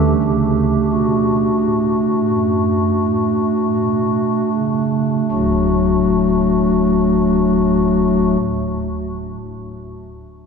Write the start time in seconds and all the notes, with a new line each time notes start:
Already playing: D2 D3 A3 D4 G4
0.24 C#3
0.92 B2 F#4
1.60 A2
2.30 F#2
3.03 A2
3.77 B2
4.54 C#3
5.31 D1 D2 A2 F#3 A3 D4 F#4